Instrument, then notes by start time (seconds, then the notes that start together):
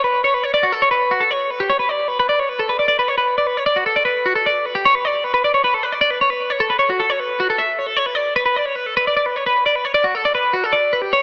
clean electric guitar
0.04 B4
0.24 C#5
0.34 B4
0.44 C#5
0.54 D5
0.63 F#4
0.72 A4
0.82 C#5
0.91 B4
1.11 F#4
1.21 A4
1.31 C#5
1.51 B4
1.60 G4
1.70 C#5
1.79 B4
1.89 D5
2.08 B4
2.20 B4
2.29 D5
2.40 C#5
2.49 B4
2.59 A4
2.69 B4
2.79 D5
2.88 D5
2.99 B4
3.08 C#5
3.18 B4
3.38 D5
3.47 B4
3.57 C#5
3.66 D5
3.76 F#4
3.86 A4
3.96 D5
4.05 B4
4.26 F#4
4.36 A4
4.46 D5
4.66 B4
4.75 G4
4.85 C#5
4.95 B4
5.05 D5
5.24 B4
5.34 B4
5.44 D5
5.54 C#5
5.64 B4
5.74 A4
5.83 B4
5.92 D5
6.01 D5
6.11 B4
6.21 C#5
6.30 B4
6.50 C#5
6.60 A4
6.70 B4
6.79 C#5
6.90 F#4
7.00 A4
7.10 C#5
7.20 B4
7.40 F#4
7.50 A4
7.58 E5
7.79 C#5
7.87 A4
7.97 C#5
8.06 B4
8.15 D5
8.36 B4
8.46 B4
8.56 D5
8.66 C#5
8.76 B4
8.86 A4
8.97 B4
9.07 D5
9.17 D5
9.26 B4
9.36 C#5
9.46 B4
9.66 D5
9.76 B4
9.85 C#5
9.94 D5
10.04 F#4
10.15 A4
10.25 D5
10.35 B4
10.53 F#4
10.64 A4
10.73 D5
10.93 B4
11.02 G4
11.13 C#5